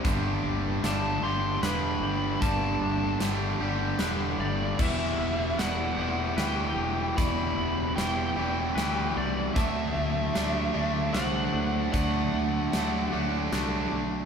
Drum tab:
CC |------|------|x-----|------|
HH |x-x-x-|x-x-x-|--x-x-|x-x-x-|
SD |--o-o-|--o-o-|--o-o-|--o-o-|
BD |o-----|o-----|o-----|o-----|

CC |------|------|
HH |x-x-x-|x-x-x-|
SD |--o-o-|--o-o-|
BD |o-----|o-----|